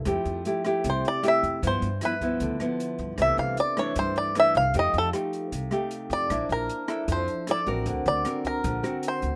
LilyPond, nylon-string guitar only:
\new Staff \with { instrumentName = "Nylon-string guitar" } { \time 4/4 \key f \major \tempo 4 = 154 << { <a e' g'>4 <a e' g'>8 <a e' g'>4. <a e' g'>4 | <f b e'>8 r8 <f b e'>8 <f b e'>4 <f b e'>4. | <e a d'>4 r8 <e a d'>4. <e a d'>8 r8 | <a ees' g'>4 <a ees' g'>4 r8 <a ees' g'>4. |
<d' e'>4. <d' e' a'>4. <d' e' a'>8 <c' fis' bes'>8~ | <c' fis' bes'>4 <c' fis' ais'>4 r8 <c' fis' ais'>4. | } \\ { f2 c2 | g,2 d2 | c2 g,2 | f2 c2 |
bes2 f2 | d2 d2 | } >> }